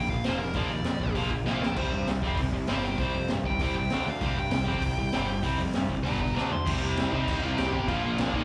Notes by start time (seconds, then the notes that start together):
0.09 A#1 A#2 F3 F5, kick
0.24 F1 A#2 F3 A#3 C5, snare, open hi-hat
0.39 A#2 F3 A#4
0.54 A#1 A#2 F3 A#3 D5, kick, open hi-hat
0.70 D#2 A#2 F3
0.83 F2 A#2 F3, snare, open hi-hat
1.00 A#1 A#2 F3, kick
1.08 kick
1.15 A#1 A#2 F3 A#3, kick, open hi-hat
1.31 A#2 F3, kick
1.45 A#1 A#2 F3 A#3 D5 F5, snare
1.61 D2 A#2 F3 A#4 G5, snare
1.76 C2 C3 G3 C4 C5, kick, crash
1.92 G2 C3 G3
2.06 C2 C3 G3, snare, open hi-hat
2.22 F2 C3 G3 C4, kick
2.30 kick
2.37 C2 C3 G3, kick, open hi-hat
2.52 C2 C3 G3, kick
2.67 G1 C3 G3 C4 C5 F5, snare, open hi-hat
2.84 C3 G3 A#4 G5
2.98 C2 C3 G3 C4 C5, kick, open hi-hat
3.15 F2 C3 G3
3.28 G2 C3 G3, snare, open hi-hat
3.44 C2 C3 G3 G5, kick
3.52 kick
3.59 C2 C3 G3 C4 G5, kick, open hi-hat
3.75 C3 G3 G5, kick
3.90 D2 D3 A3 D4, snare, open hi-hat
4.07 D2 D3 A3 F5
4.21 C2 C3 G3 C4, kick, open hi-hat
4.36 G2 C3 G3 G5
4.51 C2 C3 G3 G5, snare, open hi-hat
4.66 F2 C3 G3 C4, kick
4.75 kick
4.81 C2 C3 G3, kick, open hi-hat
4.97 C2 C3 G3, kick
5.12 G1 C3 G3 C4, snare, open hi-hat
5.28 C3 G3
5.43 C2 C3 G3 C4, kick, open hi-hat
5.58 F2 C3 G3
5.73 G2 C3 G3, snare, open hi-hat
5.89 C2 C3 G3, kick
5.97 kick
6.04 G1 G2 D3 G3 D5 A#5, kick, open hi-hat
6.20 G2 D3 D5 A#5, kick
6.35 D2 D3 A3 D4 D5 A#5, snare
6.51 D2 D3 A3 C6, floor tom
6.65 C2 C3 G3 C4, kick, crash
6.82 C2
6.97 C2, snare, crash
7.12 C3 G3 C4 D#4 D#5, kick
7.17 C3
7.28 C2, kick, crash
7.43 C2 F4 F5
7.57 C2 G4 G5, snare, crash
7.73 G1 G4 G5, kick
7.87 A#1 A#2 F4 F5, kick, crash
7.91 F3 A#3
8.04 A#1
8.18 A#1 D4 D5, snare, crash
8.34 A#2 F3 A#3 D#4 D#5, kick